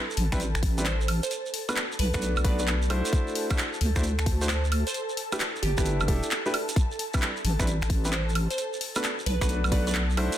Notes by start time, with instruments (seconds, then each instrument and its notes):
Already playing: analog synth pad A4 A5
0.10 shekere
0.17 wobble bass A1, open hi-hat
0.32 wobble bass A1, grand piano G3 C4 D4 E4 B4, finger snap, kick, shekere
0.40 closed hi-hat, shekere
0.55 wobble bass A1, finger snap, shekere
0.63 kick, open hi-hat
0.78 grand piano G3 C4 D4 E4 B4, closed hi-hat, shekere
0.86 synth pluck C5, clap, closed hi-hat
1.01 shekere
1.08 open hi-hat, high woodblock
1.23 synth pluck C5, closed hi-hat, shekere
1.31 closed hi-hat, shekere
1.46 shekere
1.54 open hi-hat
1.69 grand piano A3 B3 D4 F#4 B4, closed hi-hat, high woodblock, shekere
1.76 clap, closed hi-hat, shekere
1.92 shekere
1.99 wobble bass B1, synth pluck B4, open hi-hat
2.14 wobble bass B1, grand piano A3 B3 D4 F#4 B4, synth pluck B4, finger snap, kick, shekere
2.22 closed hi-hat, shekere
2.36 wobble bass B1, high woodblock, shekere
2.44 grand piano A3 B3 D4 F#4 B4, synth pluck D5, kick, open hi-hat
2.59 grand piano A3 B3 D4 F#4 B4, synth pluck D5, closed hi-hat, shekere
2.67 clap, closed hi-hat, shekere
2.82 shekere
2.90 grand piano A3 D4 E4 F#4 C5, open hi-hat, high woodblock
3.05 closed hi-hat, shekere
3.13 kick, closed hi-hat
3.27 shekere
3.35 open hi-hat
3.50 grand piano A3 D4 E4 F#4 C5, finger snap, kick, closed hi-hat, high woodblock, shekere
3.58 clap, closed hi-hat, shekere
3.73 shekere
3.81 wobble bass D2, open hi-hat
3.96 wobble bass D2, grand piano A3 D4 E4 F#4 C5, finger snap, kick, shekere
4.03 closed hi-hat, shekere
4.19 wobble bass D2, finger snap, shekere
4.26 kick, open hi-hat
4.41 grand piano A3 D4 E4 F#4 C5, closed hi-hat, shekere
4.49 synth pluck C5, clap, closed hi-hat, shekere
4.64 shekere
4.72 open hi-hat, high woodblock
4.87 synth pluck C5, closed hi-hat, shekere
4.94 closed hi-hat, shekere
5.09 shekere
5.17 open hi-hat
5.32 grand piano A3 D4 E4 G4 B4, closed hi-hat, high woodblock, shekere
5.39 clap, closed hi-hat, shekere
5.56 shekere
5.63 wobble bass G1, synth pluck G4, open hi-hat
5.78 wobble bass G1, grand piano A3 D4 E4 G4 B4, synth pluck G4, finger snap, kick, shekere
5.86 closed hi-hat, shekere
6.00 wobble bass G1, high woodblock, shekere
6.08 wobble bass E1, grand piano A3 D4 E4 G4 A4, kick, open hi-hat
6.23 closed hi-hat, shekere
6.31 clap, closed hi-hat, shekere
6.46 grand piano A3 D4 E4 G4 B4, shekere
6.54 open hi-hat, high woodblock
6.69 closed hi-hat, shekere
6.76 kick, closed hi-hat, shekere
6.91 shekere
6.99 open hi-hat
7.14 grand piano G3 C4 D4 E4 B4, finger snap, kick, closed hi-hat, high woodblock, shekere
7.22 clap, closed hi-hat, shekere
7.36 shekere
7.44 wobble bass A1, open hi-hat
7.59 wobble bass A1, grand piano G3 C4 D4 E4 B4, finger snap, kick, shekere
7.67 closed hi-hat, shekere
7.82 wobble bass A1, finger snap, shekere
7.90 kick, open hi-hat
8.05 grand piano G3 C4 D4 E4 B4, closed hi-hat, shekere
8.13 synth pluck C5, clap, closed hi-hat
8.29 shekere
8.35 open hi-hat, high woodblock
8.50 synth pluck C5, closed hi-hat, shekere
8.58 closed hi-hat, shekere
8.73 shekere
8.81 open hi-hat
8.95 grand piano A3 B3 D4 F#4 B4, closed hi-hat, high woodblock, shekere
9.03 clap, closed hi-hat, shekere
9.19 shekere
9.26 wobble bass B1, synth pluck B4, open hi-hat
9.41 wobble bass B1, grand piano A3 B3 D4 F#4 B4, synth pluck B4, finger snap, kick, shekere
9.49 closed hi-hat, shekere
9.64 wobble bass B1, high woodblock, shekere
9.72 grand piano A3 B3 D4 F#4 B4, synth pluck D5, kick, open hi-hat
9.87 grand piano A3 B3 D4 F#4 B4, synth pluck D5, closed hi-hat, shekere
9.94 clap, closed hi-hat, shekere
10.10 shekere
10.17 grand piano A3 D4 E4 F#4 C5, open hi-hat, high woodblock
10.32 closed hi-hat, shekere